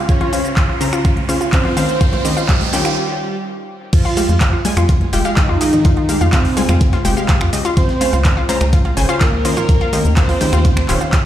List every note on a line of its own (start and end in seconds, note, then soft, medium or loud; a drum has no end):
0.00 riser medium
0.09 0.52 C#4 medium
0.09 0.52 C#5 loud
0.09 kick loud
0.09 closed hi-hat medium
0.09 cabasa soft
0.21 0.28 F4 loud
0.21 closed hi-hat soft
0.21 low conga medium
0.33 0.43 C#3 medium
0.33 0.43 C#4 medium
0.33 0.40 F4 medium
0.33 0.43 C5 medium
0.33 0.43 F5 medium
0.33 open hi-hat loud
0.33 cabasa medium
0.45 closed hi-hat medium
0.45 cabasa soft
0.56 0.64 F4 loud
0.56 kick loud
0.56 clap loud
0.56 closed hi-hat medium
0.56 cabasa soft
0.69 0.76 F4 medium
0.81 1.26 C#3 loud
0.81 1.26 C#4 medium
0.81 1.26 C5 loud
0.81 1.26 A#5 loud
0.81 open hi-hat medium
0.81 cabasa medium
0.93 1.00 F4 loud
0.93 finger snap medium
0.93 closed hi-hat medium
0.93 cabasa soft
1.05 1.12 F4 medium
1.05 kick loud
1.05 closed hi-hat medium
1.05 cabasa soft
1.17 closed hi-hat soft
1.17 high conga medium
1.29 1.35 C#3 medium
1.29 1.35 C#4 medium
1.29 1.36 F4 loud
1.29 1.35 C5 medium
1.29 1.35 F5 medium
1.29 open hi-hat medium
1.29 cabasa medium
1.41 1.48 F4 medium
1.41 closed hi-hat medium
1.41 cabasa soft
1.53 2.39 C4 medium
1.53 2.39 C5 loud
1.53 kick loud
1.53 clap loud
1.53 closed hi-hat medium
1.53 cabasa soft
1.65 1.72 F4 loud
1.65 low conga medium
1.77 1.83 D#3 loud
1.77 1.83 C#4 medium
1.77 1.84 F4 medium
1.77 1.83 C5 medium
1.77 1.83 F5 loud
1.77 open hi-hat loud
1.77 high conga medium
1.77 cabasa medium
1.89 closed hi-hat medium
1.89 cabasa soft
2.01 2.08 F4 loud
2.01 kick loud
2.01 closed hi-hat medium
2.01 cabasa soft
2.13 2.20 F4 medium
2.13 closed hi-hat soft
2.13 high conga medium
2.13 low conga medium
2.25 2.35 D#3 medium
2.25 2.35 C#4 medium
2.25 2.35 G4 medium
2.25 2.35 D#5 medium
2.25 open hi-hat loud
2.25 cabasa medium
2.37 2.44 F4 loud
2.37 closed hi-hat medium
2.37 cabasa soft
2.49 3.35 G3 medium
2.49 2.56 F4 medium
2.49 3.35 G4 loud
2.49 2.97 G4 loud
2.49 kick loud
2.49 clap loud
2.49 closed hi-hat medium
2.49 cabasa soft
2.61 open hi-hat medium
2.61 high conga medium
2.73 2.97 D#3 loud
2.73 2.97 C#4 medium
2.73 2.80 F4 loud
2.73 2.97 G4 medium
2.73 2.97 G5 loud
2.73 open hi-hat loud
2.73 cabasa medium
2.85 2.92 F4 medium
2.85 finger snap medium
2.85 cabasa soft
3.93 4.02 F2 loud
3.93 4.36 F3 medium
3.93 4.36 F4 loud
3.93 kick loud
3.93 closed hi-hat medium
3.93 ride medium
3.93 crash loud
3.93 cabasa soft
4.05 4.12 F4 loud
4.05 snare soft
4.05 closed hi-hat soft
4.17 4.27 G#3 medium
4.17 4.24 F4 medium
4.17 4.27 G4 medium
4.17 4.27 F5 medium
4.17 open hi-hat medium
4.17 open hi-hat loud
4.17 ride medium
4.17 high conga medium
4.17 cabasa medium
4.29 4.60 F2 medium
4.29 closed hi-hat medium
4.29 cabasa soft
4.41 4.48 F4 loud
4.41 kick loud
4.41 snare loud
4.41 clap loud
4.41 closed hi-hat medium
4.41 ride medium
4.41 cabasa soft
4.53 4.60 F4 medium
4.65 5.10 G3 medium
4.65 5.10 G#3 loud
4.65 5.10 G#5 loud
4.65 closed hi-hat medium
4.65 open hi-hat loud
4.65 ride medium
4.65 high conga loud
4.65 cabasa medium
4.77 5.08 F2 loud
4.77 4.84 F4 loud
4.77 finger snap medium
4.77 cabasa soft
4.89 4.96 F4 medium
4.89 kick loud
4.89 closed hi-hat medium
4.89 ride medium
4.89 cabasa soft
5.01 closed hi-hat soft
5.01 high conga medium
5.13 5.22 F1 medium
5.13 5.22 G#3 medium
5.13 5.20 F4 loud
5.13 5.22 G4 medium
5.13 5.22 G5 loud
5.13 closed hi-hat medium
5.13 open hi-hat loud
5.13 ride medium
5.13 cabasa medium
5.25 5.31 G#3 medium
5.25 5.32 F4 medium
5.25 5.31 G4 medium
5.25 5.31 F5 loud
5.25 closed hi-hat medium
5.25 cabasa soft
5.37 6.23 D#3 medium
5.37 6.23 D#4 loud
5.37 kick loud
5.37 snare loud
5.37 clap loud
5.37 closed hi-hat medium
5.37 ride medium
5.37 cabasa soft
5.49 5.58 F2 medium
5.49 5.56 F4 loud
5.61 5.71 G#3 medium
5.61 5.68 F4 medium
5.61 5.71 G4 medium
5.61 5.71 D#5 medium
5.61 closed hi-hat medium
5.61 open hi-hat loud
5.61 ride medium
5.61 cabasa medium
5.73 closed hi-hat medium
5.73 closed hi-hat soft
5.73 low conga medium
5.73 cabasa soft
5.85 5.94 F2 loud
5.85 5.92 F4 loud
5.85 kick loud
5.85 closed hi-hat medium
5.85 ride medium
5.85 cabasa soft
5.97 6.04 F4 medium
5.97 closed hi-hat soft
6.09 6.19 G#3 medium
6.09 6.19 G4 medium
6.09 6.19 F5 medium
6.09 closed hi-hat medium
6.09 open hi-hat loud
6.09 ride medium
6.09 high conga medium
6.09 cabasa medium
6.21 6.52 F2 medium
6.21 6.28 F4 loud
6.21 closed hi-hat medium
6.21 cabasa soft
6.33 7.19 C3 medium
6.33 7.19 C4 loud
6.33 7.19 C4 medium
6.33 6.40 F4 medium
6.33 kick loud
6.33 snare loud
6.33 clap loud
6.33 closed hi-hat medium
6.33 ride medium
6.33 cabasa soft
6.45 snare soft
6.45 open hi-hat medium
6.57 7.02 G3 medium
6.57 7.02 G#3 loud
6.57 6.64 F4 loud
6.57 7.02 G#5 loud
6.57 closed hi-hat medium
6.57 open hi-hat loud
6.57 ride medium
6.57 high conga loud
6.57 cabasa medium
6.69 7.00 F2 loud
6.69 6.76 F4 medium
6.69 finger snap medium
6.69 closed hi-hat medium
6.69 cabasa soft
6.81 kick loud
6.81 closed hi-hat medium
6.81 ride medium
6.81 cabasa soft
6.93 7.00 F4 loud
6.93 snare medium
6.93 closed hi-hat soft
6.93 high conga medium
7.05 7.14 F1 medium
7.05 7.14 G#3 loud
7.05 7.12 F4 medium
7.05 7.14 G4 medium
7.05 7.14 G5 loud
7.05 closed hi-hat medium
7.05 open hi-hat loud
7.05 ride medium
7.05 cabasa medium
7.17 7.23 G#3 loud
7.17 7.23 G4 medium
7.17 7.23 F5 loud
7.17 closed hi-hat medium
7.17 cabasa soft
7.29 7.36 F4 loud
7.29 kick loud
7.29 snare loud
7.29 clap loud
7.29 closed hi-hat medium
7.29 ride medium
7.29 cabasa soft
7.41 7.50 F2 medium
7.41 7.48 F4 medium
7.41 finger snap medium
7.53 7.63 C#3 medium
7.53 7.63 G#3 medium
7.53 7.63 G4 medium
7.53 7.63 D#5 medium
7.53 closed hi-hat medium
7.53 open hi-hat loud
7.53 ride medium
7.53 cabasa medium
7.65 7.72 F4 loud
7.65 closed hi-hat soft
7.65 closed hi-hat medium
7.65 cabasa soft
7.77 7.86 C#2 loud
7.77 8.20 C4 medium
7.77 7.84 F4 medium
7.77 8.20 C5 loud
7.77 kick loud
7.77 closed hi-hat medium
7.77 ride medium
7.77 cabasa soft
7.89 snare soft
7.89 closed hi-hat soft
8.01 8.11 C#3 medium
8.01 8.11 C#4 medium
8.01 8.08 F4 loud
8.01 8.11 C5 medium
8.01 8.11 F5 medium
8.01 open hi-hat medium
8.01 open hi-hat loud
8.01 ride medium
8.01 high conga medium
8.01 cabasa medium
8.13 8.44 C#2 medium
8.13 8.20 F4 medium
8.13 closed hi-hat medium
8.13 cabasa soft
8.25 kick loud
8.25 snare loud
8.25 clap loud
8.25 closed hi-hat medium
8.25 ride medium
8.25 cabasa soft
8.37 8.44 F4 loud
8.49 8.94 C#3 loud
8.49 8.94 C#4 medium
8.49 8.56 F4 medium
8.49 8.94 C5 loud
8.49 8.94 A#5 loud
8.49 closed hi-hat medium
8.49 open hi-hat loud
8.49 ride medium
8.49 high conga medium
8.49 cabasa medium
8.61 8.92 C#2 loud
8.61 finger snap medium
8.61 cabasa soft
8.73 8.80 F4 loud
8.73 kick loud
8.73 closed hi-hat medium
8.73 ride medium
8.73 cabasa soft
8.85 8.92 F4 medium
8.85 closed hi-hat soft
8.85 high conga medium
8.97 9.06 G#1 medium
8.97 9.06 C#3 loud
8.97 9.06 C#4 medium
8.97 9.06 C5 medium
8.97 9.06 G#5 loud
8.97 closed hi-hat medium
8.97 open hi-hat loud
8.97 ride medium
8.97 cabasa medium
9.09 9.15 C#3 medium
9.09 9.15 C#4 medium
9.09 9.16 F4 loud
9.09 9.15 C5 medium
9.09 9.15 F5 loud
9.09 closed hi-hat medium
9.09 cabasa soft
9.21 10.07 A#3 medium
9.21 9.28 F4 medium
9.21 10.07 A#4 loud
9.21 kick loud
9.21 snare loud
9.21 clap loud
9.21 closed hi-hat medium
9.21 ride medium
9.21 cabasa soft
9.33 9.42 C#2 medium
9.45 9.55 D#3 medium
9.45 9.55 C#4 medium
9.45 9.52 F4 loud
9.45 9.55 C5 medium
9.45 9.55 D#5 medium
9.45 closed hi-hat medium
9.45 open hi-hat loud
9.45 ride medium
9.45 cabasa medium
9.57 9.64 F4 medium
9.57 closed hi-hat soft
9.57 low conga medium
9.57 cabasa soft
9.69 9.78 D#2 loud
9.69 kick loud
9.69 closed hi-hat medium
9.69 ride medium
9.69 cabasa soft
9.81 9.88 F4 loud
9.81 closed hi-hat soft
9.93 10.03 D#3 medium
9.93 10.03 C#4 medium
9.93 10.00 F4 medium
9.93 10.03 G4 medium
9.93 10.03 D#5 medium
9.93 closed hi-hat medium
9.93 open hi-hat loud
9.93 ride medium
9.93 high conga medium
9.93 cabasa medium
10.05 10.36 D#2 medium
10.05 closed hi-hat soft
10.05 cabasa soft
10.17 11.03 C4 medium
10.17 10.24 F4 loud
10.17 11.03 C5 loud
10.17 kick loud
10.17 snare loud
10.17 clap loud
10.17 closed hi-hat medium
10.17 ride medium
10.17 cabasa soft
10.29 10.36 F4 medium
10.29 snare soft
10.29 open hi-hat medium
10.41 10.86 C#3 medium
10.41 10.86 D#3 loud
10.41 10.86 G4 medium
10.41 10.86 G5 loud
10.41 closed hi-hat medium
10.41 open hi-hat loud
10.41 ride medium
10.41 high conga medium
10.41 cabasa medium
10.53 10.84 D#2 loud
10.53 10.60 F4 loud
10.53 finger snap medium
10.53 closed hi-hat soft
10.53 cabasa soft
10.65 10.72 F4 medium
10.65 kick loud
10.65 closed hi-hat medium
10.65 ride medium
10.65 cabasa soft
10.77 finger snap medium
10.77 snare medium
10.77 closed hi-hat soft
10.77 high conga medium
10.89 10.98 D#1 medium
10.89 11.22 D#3 medium
10.89 11.22 C#4 medium
10.89 10.96 F4 loud
10.89 11.22 G4 medium
10.89 11.22 C#5 medium
10.89 clap medium
10.89 closed hi-hat medium
10.89 open hi-hat loud
10.89 ride medium
10.89 cabasa medium
11.01 11.08 F4 medium
11.01 closed hi-hat medium
11.01 cabasa soft
11.12 kick loud
11.12 snare loud
11.12 clap loud
11.12 closed hi-hat medium
11.12 ride medium
11.12 cabasa soft